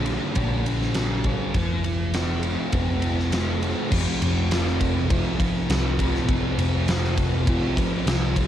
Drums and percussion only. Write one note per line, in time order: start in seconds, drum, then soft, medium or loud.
0.06 ride medium
0.35 kick loud
0.35 ride medium
0.66 ride medium
0.82 snare soft
0.94 snare loud
0.94 ride medium
1.24 kick medium
1.24 ride medium
1.54 kick loud
1.54 ride medium
1.84 ride medium
2.14 snare loud
2.14 ride medium
2.43 ride medium
2.73 kick loud
2.73 ride medium
3.02 ride medium
3.19 snare soft
3.32 snare loud
3.32 ride medium
3.63 ride medium
3.92 kick loud
3.92 crash loud
4.22 ride medium
4.51 snare loud
4.51 ride loud
4.67 snare soft
4.81 kick medium
4.81 ride medium
5.10 kick loud
5.10 ride loud
5.40 kick loud
5.40 ride medium
5.70 snare loud
5.70 ride loud
5.99 kick medium
5.99 ride medium
6.15 snare soft
6.29 kick loud
6.29 ride loud
6.59 ride medium
6.88 snare loud
6.88 ride loud
7.04 snare soft
7.18 kick medium
7.18 ride medium
7.47 kick loud
7.47 ride loud
7.77 kick loud
7.77 ride medium
8.07 snare loud
8.07 ride loud
8.36 kick medium
8.36 ride medium